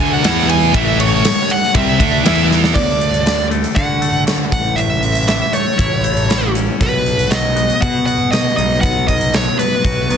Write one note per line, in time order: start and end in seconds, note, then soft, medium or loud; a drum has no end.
0.00 0.22 D2 loud
0.00 0.22 D3 loud
0.00 0.23 A3 loud
0.00 0.23 D4 loud
0.00 0.13 G#5 loud
0.13 0.49 F#5 loud
0.23 0.70 E2 loud
0.23 0.73 E3 loud
0.23 0.73 B3 loud
0.23 0.74 E4 loud
0.23 snare loud
0.23 ride loud
0.49 0.73 G#5 loud
0.49 ride loud
0.74 1.21 A1 loud
0.74 1.23 A2 loud
0.74 1.24 E3 loud
0.74 1.24 A3 medium
0.74 1.00 E5 loud
0.74 kick loud
0.74 ride loud
1.00 1.51 C#5 loud
1.00 ride medium
1.25 snare loud
1.25 ride loud
1.50 1.76 F#5 medium
1.50 ride medium
1.63 snare soft
1.75 1.98 C2 medium
1.75 1.99 C3 medium
1.75 2.00 G3 medium
1.75 2.00 C4 loud
1.75 2.47 E5 medium
1.75 kick loud
1.75 ride loud
2.00 2.23 D2 loud
2.00 2.25 D3 medium
2.00 2.26 A3 loud
2.00 2.26 D4 medium
2.00 kick loud
2.00 ride medium
2.25 2.72 E2 loud
2.25 2.75 E3 loud
2.25 2.75 B3 loud
2.25 2.75 E4 loud
2.25 snare loud
2.25 ride loud
2.51 snare medium
2.64 snare loud
2.74 3.64 D2 medium
2.74 3.25 D3 medium
2.74 3.47 D5 loud
2.74 kick loud
2.74 crash medium
2.90 snare soft
3.01 closed hi-hat medium
3.14 closed hi-hat medium
3.26 4.53 D3 medium
3.26 snare loud
3.26 closed hi-hat medium
3.51 4.00 A3 medium
3.51 closed hi-hat medium
3.64 closed hi-hat medium
3.75 4.43 D3 loud
3.75 4.26 F#4 medium
3.75 4.23 F#5 medium
3.75 kick loud
3.75 closed hi-hat medium
4.01 4.52 A3 medium
4.01 closed hi-hat medium
4.27 4.52 F#4 medium
4.27 snare loud
4.27 closed hi-hat medium
4.52 5.41 A1 medium
4.52 4.76 A2 medium
4.52 4.79 F#5 medium
4.52 kick loud
4.52 closed hi-hat medium
4.76 6.04 A2 medium
4.76 5.27 E5 loud
4.76 closed hi-hat medium
5.03 closed hi-hat medium
5.15 closed hi-hat medium
5.28 6.55 E3 medium
5.28 5.52 E5 medium
5.28 snare loud
5.28 closed hi-hat medium
5.53 6.02 A3 medium
5.53 6.52 C#5 medium
5.53 closed hi-hat medium
5.78 6.68 A1 medium
5.78 6.28 E4 medium
5.78 kick loud
5.78 closed hi-hat medium
6.04 6.80 A3 medium
6.04 closed hi-hat medium
6.17 closed hi-hat medium
6.29 6.80 E4 medium
6.29 snare loud
6.29 closed hi-hat medium
6.55 6.81 C#4 medium
6.55 closed hi-hat medium
6.81 7.70 B1 loud
6.81 8.08 B2 medium
6.81 7.34 B4 medium
6.81 kick medium
6.81 closed hi-hat medium
7.06 closed hi-hat medium
7.19 closed hi-hat medium
7.31 8.58 F#3 medium
7.31 7.81 D#5 medium
7.31 snare loud
7.31 closed hi-hat medium
7.56 8.06 B3 medium
7.56 closed hi-hat medium
7.70 closed hi-hat medium
7.81 8.49 B2 medium
7.81 8.30 F#4 medium
7.81 8.05 F#5 medium
7.81 kick loud
7.81 closed hi-hat medium
8.06 9.59 B3 medium
8.06 8.31 F#5 loud
8.06 closed hi-hat medium
8.31 9.59 F#4 medium
8.31 8.56 D#5 medium
8.31 snare loud
8.31 closed hi-hat medium
8.57 9.47 B1 medium
8.57 9.84 D#4 medium
8.57 8.80 D#5 medium
8.57 closed hi-hat medium
8.81 10.10 B2 medium
8.81 9.06 F#5 loud
8.81 kick medium
8.81 closed hi-hat medium
9.08 9.35 D#5 medium
9.08 kick medium
9.08 closed hi-hat medium
9.21 closed hi-hat medium
9.33 10.17 F#3 medium
9.33 9.58 C#5 medium
9.33 snare loud
9.33 closed hi-hat medium
9.59 10.09 B3 medium
9.59 10.17 B4 medium
9.59 closed hi-hat medium
9.84 10.07 B1 medium
9.84 10.17 F#4 medium
9.84 kick medium
9.84 closed hi-hat medium
10.09 10.17 B1 medium
10.09 10.17 B3 medium
10.09 closed hi-hat medium